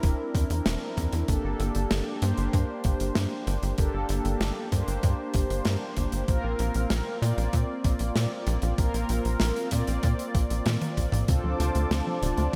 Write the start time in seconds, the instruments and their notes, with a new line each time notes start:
Already playing: analog polysynth C4 D4 E4 A#4
0.03 analog synth bass E1, kick, closed hi-hat
0.35 analog synth bass E2, kick, closed hi-hat
0.50 analog synth bass E2, closed hi-hat
0.66 analog synth bass E1, snare, closed hi-hat
0.97 analog synth bass E2, kick, closed hi-hat
1.13 analog synth bass E2, closed hi-hat
1.28 analog synth bass G1, analog polysynth A#3 D4 G4 A4, kick, closed hi-hat
1.44 analog synth bass G1
1.60 analog synth bass G1, closed hi-hat
1.75 analog synth bass G1, closed hi-hat
1.91 analog synth bass G1, snare, closed hi-hat
2.22 analog synth bass G2, analog polysynth A#3 D4 G4 C5, closed hi-hat
2.38 analog synth bass G1, closed hi-hat
2.53 analog synth bass G2, kick, closed hi-hat
2.84 analog synth bass G1, kick, closed hi-hat
3.00 analog synth bass G1, closed hi-hat
3.15 analog synth bass G2, snare, closed hi-hat
3.47 analog synth bass G1, closed hi-hat
3.63 analog synth bass G1, closed hi-hat
3.78 analog synth bass G1, analog polysynth A#3 D4 G4 A4, kick, closed hi-hat
3.94 analog synth bass G1
4.09 analog synth bass G1, closed hi-hat
4.25 analog synth bass G1, closed hi-hat
4.40 analog synth bass G1, snare, closed hi-hat
4.72 analog synth bass G2, analog polysynth A#3 D4 G4 C5, kick, closed hi-hat
4.88 analog synth bass G1, closed hi-hat
5.03 analog synth bass G2, kick, closed hi-hat
5.34 analog synth bass G1, kick, closed hi-hat
5.50 analog synth bass G1, closed hi-hat
5.65 analog synth bass G2, snare, closed hi-hat
5.97 analog synth bass G1, kick, closed hi-hat
6.12 analog synth bass G1, closed hi-hat
6.28 analog synth bass A#1, analog polysynth A#3 C4 F4 A#4, kick, closed hi-hat
6.44 analog synth bass A#1
6.59 analog synth bass A#1, closed hi-hat
6.74 analog synth bass A#1, closed hi-hat
6.90 analog synth bass A#1, snare, closed hi-hat
7.22 analog synth bass A#2, analog polysynth A#3 C4 F4 D5, closed hi-hat
7.38 analog synth bass A#1, closed hi-hat
7.53 analog synth bass A#2, kick, closed hi-hat
7.84 analog synth bass A#1, kick, closed hi-hat
7.99 analog synth bass A#1, closed hi-hat
8.16 analog synth bass A#2, snare, closed hi-hat
8.47 analog synth bass A#1, closed hi-hat
8.62 analog synth bass A#1, closed hi-hat
8.78 analog synth bass A#1, analog polysynth A#3 C4 F4 A#4, kick, closed hi-hat
8.94 analog synth bass A#1, closed hi-hat
9.09 analog synth bass A#1, closed hi-hat
9.25 analog synth bass A#1, closed hi-hat
9.40 analog synth bass A#1, snare, closed hi-hat
9.56 closed hi-hat
9.71 analog synth bass A#2, analog polysynth A#3 C4 F4 D5, kick, closed hi-hat
9.87 analog synth bass A#1, closed hi-hat
10.03 analog synth bass A#2, kick, closed hi-hat
10.19 closed hi-hat
10.35 analog synth bass A#1, kick, closed hi-hat
10.50 analog synth bass A#1, closed hi-hat
10.66 analog synth bass A#2, snare, closed hi-hat, high tom
10.81 closed hi-hat, high tom
10.97 analog synth bass A#1, kick, closed hi-hat
11.12 analog synth bass A#1, closed hi-hat, mid tom
11.28 analog synth bass D2, synth arpeggio sound C3, analog polysynth C4 D4 F4 A4, analog synth pad F4 C5 A5 D6, kick, closed hi-hat
11.44 analog synth bass D2, synth arpeggio sound F3
11.60 analog synth bass D2, synth arpeggio sound C3, closed hi-hat
11.75 analog synth bass D2, synth arpeggio sound A3, closed hi-hat
11.91 analog synth bass D2, synth arpeggio sound C3, snare, closed hi-hat
12.07 synth arpeggio sound F3
12.22 analog synth bass D1, synth arpeggio sound C3, analog polysynth C4 D4 F4 D5, closed hi-hat
12.38 analog synth bass D2, synth arpeggio sound A3, closed hi-hat